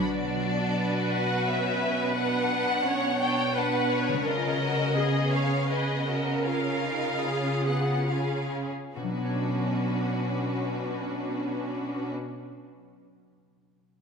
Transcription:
<<
  \new Staff \with { instrumentName = "Violin section" } { \time 3/4 \key b \minor \tempo 4 = 78 d''4. fis''8 e''4 | fis''4. g''8 fis''8 cis''8 | dis''4. eis''8 dis''4 | eis''4. fis''8 eis''8 r8 |
b'2.~ | b'2. | }
  \new Staff \with { instrumentName = "Viola section" } { \time 3/4 \key b \minor r4 b'2~ | b'4 cis''8 cis''8 b'4 | ais'4 gis'8 cis''8 b'8 ais'8~ | ais'4 gis'4 eis'8 r8 |
<cis' d'>2.~ | <cis' d'>2. | }
  \new Staff \with { instrumentName = "Violin section" } { \time 3/4 \key b \minor << { fis'2. | d'2 d'4 | eis'8 fis'8 gis'4 gis'8 fis'8 | eis'2 gis'8 r8 |
fis'2.~ | fis'2. | } \\ { d'2 cis'4 | b8 b8 cis'8 d'8 d'4 | cis'4 b4 b4 | cis'8 dis'8 cis'8 b8 cis'8 r8 |
r2. | r2. | } >> }
  \new Staff \with { instrumentName = "Harp" } { \time 3/4 \key b \minor << { <d b>2.~ | <d b>2. | r2. | r2. |
<b, fis b d' cis''>2.~ | <b, fis b d' cis''>2. | } \\ { <b, fis b'>2.~ | <b, fis b'>2. | <cis gis cis' b'>2.~ | <cis gis cis' b'>2.~ |
<cis gis cis' b'>2.~ | <cis gis cis' b'>2. | } >> }
  \new Staff \with { instrumentName = "Cello section" } { \clef bass \time 3/4 \key b \minor b,2.~ | b,2. | cis2.~ | cis2~ cis8 r8 |
b,2.~ | b,2. | }
>>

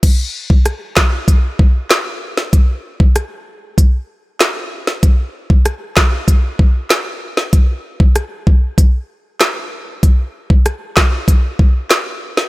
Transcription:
\new DrumStaff \with { instrumentName = "Drums" } \drummode { \time 4/4 \tempo 4 = 96 <cymc hh bd>8. bd16 <hh ss>8 <hc bd sn>8 <hh bd>8 bd8 <hc hh sn>8. sn16 | <hh bd>8. bd16 <hh ss>4 <hh bd>4 <hc hh sn>8. sn16 | <hh bd>8. bd16 <hh ss>8 <hc bd sn>8 <hh bd>8 bd8 <hc hh sn>8. sn16 | <hh bd>8. bd16 <hh ss>8 bd8 <hh bd>4 <hc hh ss sn>4 |
<hh bd>8. bd16 <hh ss>8 <hc bd sn>8 <hh bd>8 bd8 <hc hh sn>8. sn16 | }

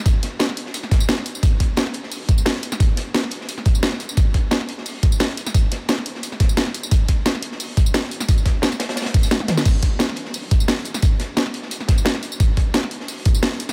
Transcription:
\new DrumStaff \with { instrumentName = "Drums" } \drummode { \time 4/4 \tempo 4 = 175 <hh bd tamb>8 <hh sn>8 <hh sn tamb>16 sn16 hh16 sn16 <hh tamb>16 sn16 <hh bd sn tamb>16 tamb16 <hh sn tamb>16 sn16 <hh tamb>16 tamb16 | <hh bd tamb>8 <hh bd>8 <hh sn tamb>16 sn16 hh16 sn16 <hh hho tamb>8 <hh bd tamb>16 tamb16 <hh sn tamb>16 sn16 <hh tamb>16 <sn tamb>16 | <hh bd tamb>8 <hh sn>8 <hh sn tamb>16 sn16 hh16 sn16 <hh tamb>16 sn16 <hh bd tamb>16 tamb16 <hh sn tamb>16 sn16 <hh tamb>16 tamb16 | <hh bd tamb>8 <hh bd>8 <hh sn tamb>16 sn16 hh16 sn16 <hh hho tamb>8 <hh bd tamb>16 tamb16 <hh sn tamb>16 sn16 <hh tamb>16 <sn tamb>16 |
<hh bd tamb>8 <hh sn>8 <hh sn tamb>16 sn16 hh16 sn16 <hh tamb>16 sn16 <hh bd sn tamb>16 tamb16 <hh sn tamb>16 sn16 <hh tamb>16 tamb16 | <hh bd tamb>8 <hh bd>8 <hh sn tamb>16 sn16 hh16 sn16 <hh hho tamb>8 <hh bd tamb>16 tamb16 <hh sn tamb>16 sn16 <hh tamb>16 <sn tamb>16 | <hh bd tamb>16 tamb16 <hh bd sn>8 <hh sn tamb>16 <sn tamb>16 <hh sn>16 <hh sn>16 <hh sn tamb>32 <hh sn>32 <hh sn>16 <hh hho bd tamb>16 <sn tamb>16 <hh sn tamb tommh>16 <sn tommh>16 <hh sn tamb toml>16 <sn tamb>16 | <cymc hh bd tamb>8 <hh bd>8 <hh sn tamb>16 sn16 hh16 sn16 <hh hho tamb>8 <hh bd tamb>16 tamb16 <hh sn tamb>16 sn16 <hh tamb>16 <sn tamb>16 |
<hh bd tamb>8 <hh sn>8 <hh sn tamb>16 sn16 hh16 sn16 <hh tamb>16 sn16 <hh bd sn tamb>16 tamb16 <hh sn tamb>16 sn16 <hh tamb>16 tamb16 | <hh bd tamb>8 <hh bd>8 <hh sn tamb>16 sn16 hh16 sn16 <hh hho tamb>8 <hh bd tamb>16 tamb16 <hh sn tamb>16 sn16 <hh tamb>16 <sn tamb>16 | }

